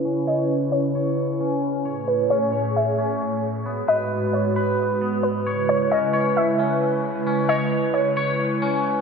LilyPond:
<<
  \new Staff \with { instrumentName = "Synth pluck" } { \time 4/4 \key cis \minor \tempo 4 = 133 r8 dis''4 cis''2~ cis''8 | r8 b'8 cis''4 e''2 | r8 dis''4 cis''2 b'8 | r8 cis''8 dis''4 e''2 |
r8 dis''4 cis''2~ cis''8 | }
  \new Staff \with { instrumentName = "Clean electric guitar" } { \time 4/4 \key cis \minor <cis' cis''>8 cis''4. cis''4 cis'4 | cis''4 cis'8 cis''4 cis'4. | b8 b'4. b'4 b4 | cis''4 cis'8 cis''4 cis'4. |
cis'8 cis''4. cis''4 cis'4 | }
  \new Staff \with { instrumentName = "Analog synth pad" } { \time 4/4 \key cis \minor << { <cis' b'>1 | <a cis''>1 | <gis b'>1~ | <gis b'>1~ |
<gis b'>1 | } \\ { <cis e'>1 | <a, gis'>1 | <gis, fis'>1 | <cis e'>1~ |
<cis e'>1 | } >> }
>>